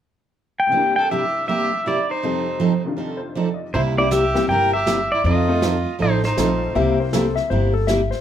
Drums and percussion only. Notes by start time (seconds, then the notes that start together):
3.73 brush sweep
4.11 snare, hi-hat pedal
4.35 snare
4.49 brush sweep
4.87 snare, hi-hat pedal
5.24 brush sweep
5.62 snare, hi-hat pedal
6.00 brush sweep
6.24 snare
6.37 snare, hi-hat pedal
6.75 brush sweep
7.13 snare, hi-hat pedal
7.37 snare
7.51 brush sweep
7.88 snare, hi-hat pedal
8.12 snare